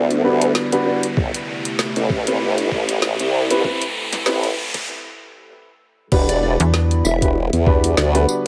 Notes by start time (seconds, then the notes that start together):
Already playing: D2 D3 G3 B3 E4 D5, riser
0.11 closed hi-hat
0.24 D2 D4 F#4 G4 B4
0.42 closed hi-hat
0.55 snare
0.72 D4 F#4 G4 B4, closed hi-hat
0.86 D4 F#4 G4 B4
1.03 closed hi-hat
1.17 A1 C3 A3 E4 G4, kick
1.34 closed hi-hat
1.65 closed hi-hat
1.79 snare
1.96 A1, closed hi-hat
2.10 kick
2.27 C4 E4 G4 B4, closed hi-hat
2.41 G1
2.58 closed hi-hat
2.72 A1, kick
2.89 closed hi-hat
3.02 snare
3.20 C2, closed hi-hat
3.51 C4 E4 G4 B4, closed hi-hat
3.64 C4 E4 G4 A4 B4, kick
3.82 closed hi-hat
4.13 snare, closed hi-hat
4.26 A1 C4 E4 G4 B4, snare
4.44 closed hi-hat
4.74 kick, snare, closed hi-hat
6.12 E1 D3 G3 B3 D4 E4 F#4 G4 B4, kick, crash
6.29 D5, closed hi-hat
6.43 D5
6.60 E2, closed hi-hat
6.74 snare
6.91 closed hi-hat
7.05 E1 E5, tambourine
7.22 D4 F#4 G4 B4, kick, closed hi-hat
7.53 E2, closed hi-hat
7.66 D4 F#4 G4 B4, kick
7.84 closed hi-hat
7.97 D2 D5, snare
8.15 D4 F#4 G4 B4, closed hi-hat
8.29 tambourine